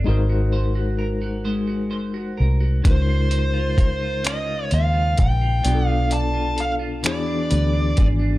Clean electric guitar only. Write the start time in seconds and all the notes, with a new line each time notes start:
Already playing: B3 D4 A4
0.06 G#3 C5
0.29 F#4
0.53 C5
0.75 F#4
0.99 A#4
1.22 F#4
1.45 G#3 C5
1.67 F#4
1.91 C5
2.14 F#4
2.37 A#4
2.60 F#4
2.84 C#4 C5
3.07 F4
3.31 C5
3.54 F4
3.77 A#4
4.00 F4
4.24 C#4 C5
4.47 F4
4.71 C5
4.93 F4
5.17 A#4
5.41 F4
5.63 B3 D5
5.87 F4
6.10 D5
6.33 F4
6.57 A4
6.79 F4
7.03 E3 B4
7.26 D4
7.50 B4
7.73 D4
7.96 G#4
8.19 D4